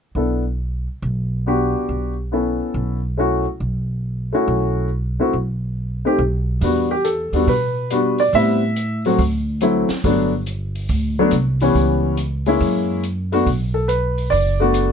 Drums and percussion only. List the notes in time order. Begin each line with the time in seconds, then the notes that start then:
6.62 kick, open hi-hat
7.05 closed hi-hat
7.33 open hi-hat
7.48 kick, open hi-hat
7.90 closed hi-hat
8.18 open hi-hat
8.33 kick, open hi-hat
8.76 closed hi-hat
9.05 open hi-hat
9.19 kick, open hi-hat
9.61 closed hi-hat
9.89 snare, open hi-hat
10.04 kick, open hi-hat
10.46 closed hi-hat
10.75 open hi-hat
10.89 kick, open hi-hat
11.31 closed hi-hat
11.60 open hi-hat
11.75 kick, open hi-hat
12.17 closed hi-hat
12.46 open hi-hat
12.61 kick, open hi-hat
13.04 closed hi-hat
13.32 open hi-hat
13.46 kick, open hi-hat
13.89 closed hi-hat
14.18 open hi-hat
14.32 kick, open hi-hat
14.74 closed hi-hat